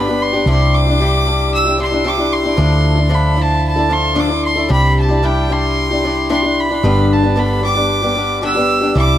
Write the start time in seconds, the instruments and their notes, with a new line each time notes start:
Already playing: fingered electric bass G1, fiddle B5
0.08 steel-string acoustic guitar G3 B3 D4 G4
0.22 fiddle C6
0.33 steel-string acoustic guitar G3 B3 D4 G4
0.46 fingered electric bass C2, steel-string acoustic guitar C3 G3 D4 E4 G4, fiddle C6
0.74 fiddle D6
0.87 steel-string acoustic guitar D4 E4 G4
1.00 steel-string acoustic guitar C3 G3 D4 E4 G4
1.26 steel-string acoustic guitar G3 D4 E4 G4
1.55 fiddle E6
1.65 steel-string acoustic guitar D4 E4 G4
1.77 steel-string acoustic guitar G3 D4 E4 G4
1.82 fiddle C6
1.91 steel-string acoustic guitar D4 E4 G4
2.04 steel-string acoustic guitar C3 G3 D4 E4 G4, fiddle D6
2.18 steel-string acoustic guitar D4 E4 G4
2.33 fiddle C6
2.43 steel-string acoustic guitar D4 E4 G4
2.57 fingered electric bass D2, steel-string acoustic guitar D3 F3 D4 E4 A4
2.96 steel-string acoustic guitar D4 E4 A4
3.09 steel-string acoustic guitar D3 F3 D4 E4 A4
3.14 fiddle B5
3.36 steel-string acoustic guitar F3 D4 E4 A4
3.41 fiddle A5
3.68 fiddle A5
3.76 steel-string acoustic guitar D4 E4 A4
3.89 steel-string acoustic guitar F3 D4 E4 A4
3.93 fiddle C6
4.15 steel-string acoustic guitar D3 F3 D4 E4 A4
4.19 fiddle D6
4.28 steel-string acoustic guitar D4 E4 A4
4.45 fiddle C6
4.56 steel-string acoustic guitar D4 E4 A4
4.68 fingered electric bass C2, steel-string acoustic guitar C3 G3 D4 E4 G4, fiddle B5
4.99 fiddle A5
5.08 steel-string acoustic guitar D4 E4 G4
5.22 steel-string acoustic guitar C3 G3 D4 E4 G4, fiddle G5
5.49 steel-string acoustic guitar G3 D4 E4 G4, fiddle C6
5.90 steel-string acoustic guitar D4 E4 G4
6.04 steel-string acoustic guitar G3 D4 E4 G4
6.30 steel-string acoustic guitar C3 G3 D4 E4 G4, fiddle C6
6.42 steel-string acoustic guitar D4 E4 G4
6.60 fiddle B5
6.69 steel-string acoustic guitar D4 E4 G4
6.83 fingered electric bass G1, steel-string acoustic guitar G2 D3 G3 B3 D4 G4
7.13 fiddle A5
7.22 steel-string acoustic guitar G3 B3 D4 G4
7.36 steel-string acoustic guitar G2 D3 G3 B3 D4 G4, fiddle B5
7.61 steel-string acoustic guitar G3 B3 D4 G4, fiddle D6
7.75 steel-string acoustic guitar G3 B3 D4 G4
8.02 steel-string acoustic guitar G3 B3 D4 G4
8.15 steel-string acoustic guitar G3 B3 D4 G4
8.41 steel-string acoustic guitar G2 D3 G3 B3 D4 G4, fiddle E6
8.55 steel-string acoustic guitar G3 B3 D4 G4
8.81 steel-string acoustic guitar G3 B3 D4 G4
8.95 fingered electric bass C2, steel-string acoustic guitar C3 G3 D4 E4 G4, fiddle D6